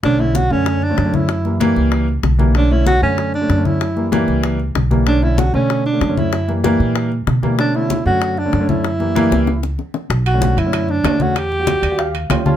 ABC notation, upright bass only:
X:1
M:4/4
L:1/8
Q:1/4=191
K:Bm
V:1 name="Upright bass" clef=bass
B,,,3 F,,3 F,,2- | F,,3 C,,3 B,,,2- | B,,,3 F,,3 F,,2- | F,,3 C,,3 B,,,2- |
B,,,3 B,,3 F,,2- | F,,3 ^A,,3 B,,2- | B,,3 F,,3 F,,2- | F,,3 C,,3 z2 |
B,,,3 F,,3 E,,2- | E,,3 ^D,,3 =D,,2 |]